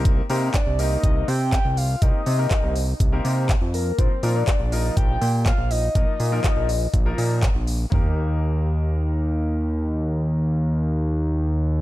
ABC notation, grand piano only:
X:1
M:4/4
L:1/16
Q:1/4=122
K:Eb
V:1 name="Grand piano"
[B,CEGB] z [B,CEGB]2 z2 [B,CEGB]4 z6 | [B,CEGB] z2 [B,CEGB]3 z3 [B,CEGB]3 z4 | [F,B,EFB] z [F,B,EFB]2 z2 [F,B,EFB]4 z6 | [F,B,EFB] z2 [F,B,EFB]3 z3 [F,B,EFB]3 z4 |
[B,EGB]16- | [B,EGB]16 |]